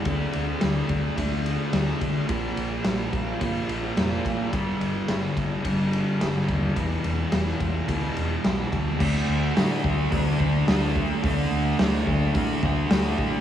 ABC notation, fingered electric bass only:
X:1
M:4/4
L:1/8
Q:1/4=107
K:Glyd
V:1 name="Fingered electric bass" clef=bass
D,, D,, D,, D,, D,,2 D,, D, | _B,,, B,,, B,,, B,,, G,,, B,,, =F,,, A,,, | G,,, G,,, G,,, G,,, G,,,2 G,,, _E,, | E,,, E,,, E,,, E,,, D,, E,,, B,,, D,, |
D,, D,, A,, D,, D,, D,, D,,2 | D,, D,, D,, D,, A,, D,, D,, A,, |]